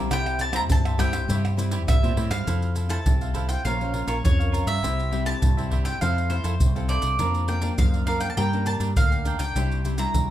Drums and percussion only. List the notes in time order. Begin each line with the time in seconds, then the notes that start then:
0.11 pandeiro, tamborim, maracas, surdo
0.26 pandeiro, tamborim, maracas
0.39 pandeiro, maracas
0.53 pandeiro, tamborim, maracas
0.70 pandeiro, maracas, surdo
0.85 pandeiro, tamborim, maracas
0.99 pandeiro, tamborim, maracas, surdo
1.13 pandeiro, tamborim, maracas
1.30 pandeiro, maracas, surdo
1.45 pandeiro, tamborim, maracas
1.59 pandeiro, maracas
1.71 pandeiro, maracas
1.88 pandeiro, tamborim, maracas, surdo
2.04 pandeiro, maracas
2.17 pandeiro
2.31 pandeiro, tamborim, maracas
2.47 pandeiro, maracas, surdo
2.62 pandeiro, maracas
2.76 pandeiro, maracas
2.90 pandeiro, maracas
3.06 pandeiro, maracas, surdo
3.21 pandeiro, maracas
3.34 pandeiro, maracas, surdo
3.49 pandeiro, maracas
3.65 pandeiro, maracas, surdo
3.81 pandeiro, maracas
3.94 pandeiro
4.08 pandeiro, maracas
4.25 pandeiro, maracas, surdo
4.40 pandeiro, maracas
4.54 pandeiro, maracas
4.67 pandeiro, maracas
4.84 pandeiro, maracas, surdo
4.99 pandeiro, maracas
5.12 pandeiro
5.26 pandeiro, maracas
5.42 pandeiro, maracas, surdo
5.58 pandeiro, maracas
5.71 pandeiro, surdo
5.85 pandeiro, maracas
6.02 pandeiro, maracas, surdo
6.18 pandeiro, maracas
6.30 pandeiro
6.44 pandeiro, maracas
6.60 pandeiro, maracas, surdo
6.76 pandeiro, maracas
6.89 pandeiro, maracas
7.02 pandeiro, maracas
7.19 pandeiro, maracas, surdo
7.34 pandeiro, maracas
7.48 pandeiro
7.62 pandeiro, maracas
7.78 pandeiro, maracas, surdo
7.94 pandeiro, maracas
8.07 pandeiro
8.20 pandeiro, maracas
8.37 pandeiro, maracas, surdo
8.53 pandeiro, maracas
8.66 pandeiro, maracas
8.80 pandeiro, maracas
8.96 pandeiro, maracas, surdo
9.12 pandeiro, maracas
9.25 pandeiro, maracas
9.39 pandeiro, maracas
9.56 pandeiro, maracas, surdo
9.72 pandeiro, maracas
9.85 pandeiro, maracas
9.98 pandeiro, maracas
10.14 pandeiro, maracas, surdo